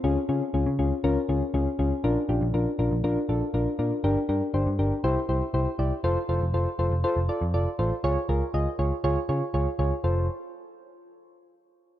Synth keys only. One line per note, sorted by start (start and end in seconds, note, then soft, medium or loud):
0.04 0.19 C#4 loud
0.04 0.19 F4 loud
0.04 0.19 G#4 loud
0.29 0.44 C#4 medium
0.29 0.44 F4 medium
0.29 0.44 G#4 medium
0.54 0.69 C#4 medium
0.54 0.69 F4 medium
0.54 0.69 G#4 medium
0.79 0.94 C#4 medium
0.79 0.94 F4 medium
0.79 0.94 G#4 medium
1.04 1.19 C#4 loud
1.04 1.19 F4 loud
1.04 1.19 A#4 loud
1.29 1.44 C#4 medium
1.29 1.44 F4 medium
1.29 1.44 G#4 medium
1.54 1.69 C#4 medium
1.54 1.69 F4 medium
1.54 1.69 G#4 loud
1.79 1.94 C#4 medium
1.79 1.94 F4 medium
1.79 1.94 G#4 medium
2.04 2.19 D4 loud
2.04 2.19 F4 loud
2.04 2.19 A#4 loud
2.29 2.44 D4 medium
2.29 2.44 F4 medium
2.29 2.44 G4 medium
2.54 2.69 D4 medium
2.54 2.69 F4 medium
2.54 2.69 A#4 medium
2.79 2.94 D4 medium
2.79 2.94 F4 medium
2.79 2.94 A#4 medium
3.04 3.19 D4 loud
3.04 3.19 F4 loud
3.04 3.19 A#4 loud
3.29 3.44 D4 medium
3.29 3.44 F4 medium
3.29 3.44 A4 loud
3.54 3.69 D4 medium
3.54 3.69 F4 medium
3.54 3.69 A#4 loud
3.79 3.94 D4 medium
3.79 3.94 F4 medium
3.79 3.94 A#4 medium
4.04 4.19 D4 loud
4.04 4.19 G4 loud
4.04 4.19 A#4 loud
4.29 4.44 D4 medium
4.29 4.44 G4 medium
4.29 4.44 A#4 medium
4.54 4.69 D4 medium
4.54 4.69 G4 medium
4.54 4.69 C5 medium
4.79 4.94 D4 medium
4.79 4.94 G4 medium
4.79 4.94 A#4 medium
5.04 5.19 E4 loud
5.04 5.19 G4 loud
5.04 5.19 C5 loud
5.29 5.44 E4 medium
5.29 5.44 G4 medium
5.29 5.44 C5 medium
5.54 5.69 E4 medium
5.54 5.69 G4 medium
5.54 5.69 C5 loud
5.79 5.94 E4 medium
5.79 5.94 G4 medium
5.79 5.94 D5 medium
6.04 6.19 F4 loud
6.04 6.19 A4 loud
6.04 6.19 C5 loud
6.29 6.44 F4 medium
6.29 6.44 A4 medium
6.29 6.44 C5 medium
6.54 6.69 F4 medium
6.54 6.69 A4 medium
6.54 6.69 C5 medium
6.79 6.94 F4 medium
6.79 6.94 A4 medium
6.79 6.94 C5 medium
7.04 7.19 F4 loud
7.04 7.19 A4 loud
7.04 7.19 C5 loud
7.29 7.44 F4 medium
7.29 7.44 A4 medium
7.29 7.44 D5 medium
7.54 7.69 F4 medium
7.54 7.69 A4 medium
7.54 7.69 D5 loud
7.79 7.94 F4 medium
7.79 7.94 A4 medium
7.79 7.94 C5 medium
8.04 8.19 F4 loud
8.04 8.19 G#4 loud
8.04 8.19 C#5 loud
8.29 8.44 F4 medium
8.29 8.44 G#4 medium
8.29 8.44 A#4 loud
8.54 8.69 F4 medium
8.54 8.69 G#4 medium
8.54 8.69 D#5 loud
8.79 8.94 F4 medium
8.79 8.94 G#4 medium
8.79 8.94 C#5 loud
9.04 9.19 F4 loud
9.04 9.19 G#4 loud
9.04 9.19 C#5 loud
9.29 9.44 F4 medium
9.29 9.44 G#4 medium
9.29 9.44 C#5 loud
9.54 9.69 F4 medium
9.54 9.69 G#4 medium
9.54 9.69 C#5 loud
9.79 9.94 F4 medium
9.79 9.94 G#4 medium
9.79 9.94 C#5 loud
10.04 10.27 F4 medium
10.04 10.27 A4 medium
10.04 10.27 C5 medium